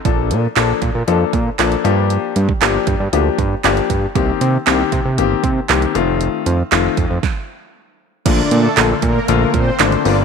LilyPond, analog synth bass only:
\new Staff \with { instrumentName = "Analog synth bass" } { \clef bass \time 4/4 \key bes \major \tempo 4 = 117 bes,,8 bes,8 bes,,8 bes,16 bes,16 f,8 bes,8 bes,,8 g,8~ | g,8 g,8 g,,8 g,16 g,16 d,8 g,8 g,,8 g,8 | c,8 c8 c,8 c16 c16 g,,8 c8 c,8 f,,8~ | f,,8 f,8 f,,8 f,16 f,16 r2 |
bes,,8 bes,8 bes,,8 bes,8 bes,,8 bes,8 aes,,8 g,,8 | }